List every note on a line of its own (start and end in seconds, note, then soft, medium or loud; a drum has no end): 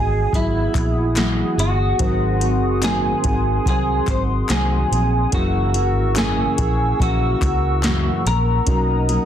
0.00 0.25 G#1 loud
0.00 0.33 B3 soft
0.00 2.02 B3 medium
0.00 0.34 D#4 soft
0.00 2.00 D#4 medium
0.00 2.01 F#4 medium
0.00 0.33 G#4 medium
0.00 0.37 G#4 loud
0.00 2.02 G#4 medium
0.00 5.29 G#4 medium
0.00 0.82 D#5 medium
0.00 5.29 F#5 medium
0.00 5.29 D#6 medium
0.33 0.66 G#1 medium
0.33 0.75 F#3 medium
0.33 0.75 B3 medium
0.33 1.63 E4 medium
0.33 0.72 G#4 medium
0.33 kick loud
0.33 closed hi-hat medium
0.73 1.41 A#1 medium
0.73 1.15 B3 soft
0.73 1.16 G#4 medium
0.73 kick loud
0.73 clap medium
0.73 closed hi-hat medium
1.15 1.57 E3 medium
1.15 1.58 F#3 medium
1.15 1.58 B3 medium
1.15 1.56 G#4 medium
1.15 snare loud
1.15 clap medium
1.15 closed hi-hat medium
1.57 1.91 G1 medium
1.57 2.00 B3 soft
1.57 1.99 D#4 soft
1.57 2.84 F#4 medium
1.57 2.00 G#4 medium
1.57 closed hi-hat medium
1.99 2.62 G#1 loud
1.99 2.41 G#2 medium
1.99 2.41 D#3 medium
1.99 2.40 F#3 medium
1.99 2.66 C4 medium
1.99 2.40 C4 medium
1.99 2.66 D#4 medium
1.99 2.38 D#4 medium
1.99 2.66 F#4 medium
1.99 2.67 A#4 medium
1.99 5.30 C6 medium
1.99 kick loud
1.99 closed hi-hat medium
2.40 2.82 F#3 soft
2.40 2.82 C4 medium
2.40 2.82 D#4 medium
2.40 closed hi-hat medium
2.62 3.12 F#1 medium
2.82 3.24 G#2 medium
2.82 3.24 D#3 medium
2.82 3.25 F#3 medium
2.82 4.15 C4 medium
2.82 3.24 C4 medium
2.82 4.15 D#4 medium
2.82 3.23 D#4 medium
2.82 4.16 F#4 medium
2.82 3.67 G#4 loud
2.82 4.16 A#4 medium
2.82 snare loud
2.82 clap medium
2.82 closed hi-hat medium
3.24 3.58 G#1 loud
3.24 3.65 F#3 soft
3.24 3.66 C4 medium
3.24 3.66 D#4 soft
3.24 kick loud
3.24 closed hi-hat medium
3.65 3.99 C2 medium
3.65 4.07 D#3 medium
3.65 4.08 F#3 medium
3.65 4.07 C4 medium
3.65 4.06 D#4 medium
3.65 4.10 G#4 loud
3.65 kick loud
3.65 closed hi-hat medium
4.07 4.41 G#1 loud
4.07 4.49 F#3 soft
4.07 4.49 C4 soft
4.07 4.50 D#4 soft
4.07 4.21 C5 loud
4.07 kick loud
4.07 clap medium
4.07 closed hi-hat medium
4.49 4.83 C2 loud
4.49 4.91 G#2 medium
4.49 4.92 D#3 medium
4.49 4.92 F#3 medium
4.49 4.91 C4 medium
4.49 4.90 D#4 medium
4.49 5.34 G#4 medium
4.49 snare loud
4.49 clap medium
4.49 closed hi-hat medium
4.91 5.25 A#1 medium
4.91 5.33 F#3 medium
4.91 5.33 C4 medium
4.91 5.33 D#4 medium
4.91 closed hi-hat medium
5.32 5.95 F#1 loud
5.32 5.74 F#2 medium
5.32 5.75 C#3 medium
5.32 5.75 E3 medium
5.32 5.75 A#3 medium
5.32 5.99 C#4 medium
5.32 5.99 E4 medium
5.32 5.74 E4 medium
5.32 6.17 F#4 medium
5.32 5.99 G#4 medium
5.32 8.63 A#4 medium
5.32 6.00 A#4 medium
5.32 9.25 F#5 medium
5.32 8.63 C#6 medium
5.32 8.63 E6 medium
5.32 kick loud
5.32 closed hi-hat medium
5.74 6.16 E3 medium
5.74 6.16 A#3 medium
5.74 6.16 E4 medium
5.74 closed hi-hat medium
5.95 6.45 G#1 medium
6.15 6.58 F#2 medium
6.15 6.58 C#3 medium
6.15 6.58 E3 medium
6.15 6.58 A#3 medium
6.15 7.48 C#4 medium
6.15 7.49 E4 medium
6.15 6.56 E4 medium
6.15 7.49 G#4 medium
6.15 7.01 G#4 loud
6.15 7.50 A#4 medium
6.15 snare loud
6.15 clap medium
6.15 closed hi-hat loud
6.57 6.92 A#1 medium
6.57 6.99 E3 soft
6.57 7.00 A#3 soft
6.57 6.99 E4 medium
6.57 kick medium
6.57 closed hi-hat medium
6.99 7.33 A#1 loud
6.99 7.41 C#3 medium
6.99 7.42 E3 medium
6.99 7.41 A#3 medium
6.99 7.40 E4 medium
6.99 8.27 F#4 medium
6.99 kick loud
6.99 closed hi-hat medium
7.41 8.08 C#2 medium
7.41 7.83 E3 soft
7.41 7.84 A#3 soft
7.41 7.83 E4 medium
7.41 kick medium
7.41 clap medium
7.41 closed hi-hat medium
7.83 8.25 F#2 medium
7.83 8.25 C#3 medium
7.83 8.25 E3 medium
7.83 8.25 A#3 loud
7.83 8.24 E4 medium
7.83 snare loud
7.83 clap medium
7.83 closed hi-hat medium
8.25 8.59 A#1 loud
8.25 8.67 E3 soft
8.25 8.67 A#3 medium
8.25 8.67 E4 medium
8.25 9.25 A#4 loud
8.25 closed hi-hat medium
8.66 9.17 B1 loud
8.66 9.08 B2 medium
8.66 9.09 F#3 medium
8.66 9.07 A#3 medium
8.66 9.25 C#4 medium
8.66 9.25 D#4 medium
8.66 9.07 D#4 medium
8.66 9.25 F#4 medium
8.66 9.25 A#4 medium
8.66 9.25 D#5 medium
8.66 9.25 A#5 medium
8.66 9.25 D#6 medium
8.66 kick loud
8.66 closed hi-hat medium
9.08 9.25 F#3 soft
9.08 9.25 A#3 medium
9.08 9.25 D#4 medium
9.08 closed hi-hat medium